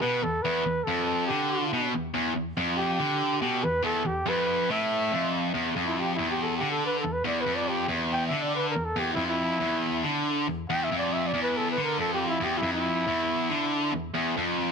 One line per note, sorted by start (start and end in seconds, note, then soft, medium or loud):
0.00 0.22 B2 medium
0.00 0.24 B4 loud
0.22 0.39 E2 medium
0.22 0.44 A4 medium
0.42 0.64 E2 loud
0.42 0.85 B4 loud
0.66 0.82 E2 medium
0.84 1.29 F2 loud
0.84 1.26 A4 medium
1.27 1.71 D3 loud
1.27 1.88 G4 medium
1.73 1.93 B2 medium
1.94 2.10 E2 medium
2.14 2.34 E2 loud
2.35 2.52 E2 medium
2.57 2.99 F2 loud
2.76 3.37 G4 medium
3.00 3.41 D3 loud
3.41 3.62 B2 medium
3.41 3.65 G4 medium
3.63 3.80 E2 medium
3.63 3.84 B4 loud
3.83 4.04 E2 loud
3.83 4.08 A4 medium
4.05 4.22 E2 medium
4.05 4.30 G4 medium
4.26 4.68 F2 loud
4.26 4.72 B4 medium
4.70 5.12 A2 loud
4.70 5.34 E5 loud
5.11 5.54 F2 medium
5.54 5.75 E2 loud
5.76 6.18 F2 loud
5.86 6.01 E4 medium
6.00 6.12 G4 medium
6.15 6.61 E2 medium
6.15 6.27 E4 medium
6.30 6.44 G4 medium
6.43 6.55 A4 medium
6.57 6.69 G4 medium
6.61 7.03 D3 medium
6.71 6.84 A4 medium
6.86 6.98 B4 medium
6.99 7.21 E2 medium
6.99 7.14 A4 medium
7.12 7.26 B4 medium
7.24 7.45 E2 loud
7.24 7.42 D5 medium
7.41 7.57 B4 medium
7.46 7.88 F2 loud
7.55 7.70 D5 medium
7.69 7.89 G4 loud
7.88 8.31 E2 loud
8.13 8.26 G5 loud
8.27 8.74 D3 medium
8.27 8.44 E5 medium
8.42 8.54 D5 medium
8.55 8.68 B4 medium
8.70 8.86 A#4 medium
8.75 8.93 E2 medium
8.85 9.01 A4 medium
8.96 9.16 E2 loud
8.96 9.12 G4 medium
9.13 9.60 F2 loud
9.13 9.26 E4 loud
9.27 10.10 E4 loud
9.60 10.03 E2 loud
10.03 10.46 D3 medium
10.47 10.64 E2 medium
10.70 10.90 E2 loud
10.70 10.85 G5 loud
10.84 10.98 E5 medium
10.91 11.33 F2 loud
10.98 11.14 D5 medium
11.13 11.29 E5 medium
11.27 11.41 D5 medium
11.34 11.76 E2 loud
11.42 11.58 B4 medium
11.57 11.70 A4 loud
11.71 11.83 B4 medium
11.77 11.98 D3 medium
11.84 11.98 A#4 medium
11.98 12.40 F2 medium
11.98 12.12 A4 medium
12.13 12.27 G4 loud
12.28 12.45 E4 loud
12.40 12.62 E2 medium
12.40 12.59 G4 medium
12.58 12.71 E4 loud
12.62 13.05 F2 loud
12.73 13.98 E4 loud
13.07 13.49 E2 loud
13.49 13.92 D3 medium
13.92 14.10 E2 medium
14.14 14.36 E2 loud
14.37 14.72 F2 medium